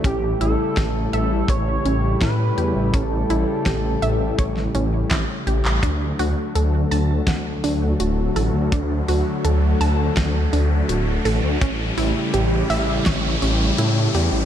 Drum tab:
HH |x-x-x-x-x-x-x-x-|x-x-x-x-x-x-x-x-|x-o-x-o-x-o-x-o-|x-o-x-o-x-o-x-o-|
CP |----------------|------------x--x|----------------|----------------|
SD |----o-------o---|----o----o--o---|--------o-------|--------o-------|
BD |o---o---o---o---|o---o---o---o---|o-------o-------|o-------o-------|

HH |x-o-x-o-x-o-x-o-|
CP |----------------|
SD |--------o-------|
BD |o-------o-------|